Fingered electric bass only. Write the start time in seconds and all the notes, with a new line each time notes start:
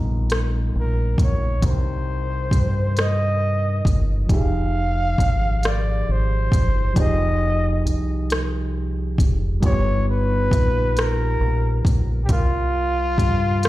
Already playing: A#1
0.75 A#1
1.19 A#1
1.63 C2
2.52 G2
3.86 G1
4.30 F1
5.19 G#1
6.09 G#1
6.53 G1
6.96 F1
7.86 C2
9.19 F1
9.63 G1
10.52 A#1
11.40 A#1
11.85 A#1
12.29 C2
13.19 G2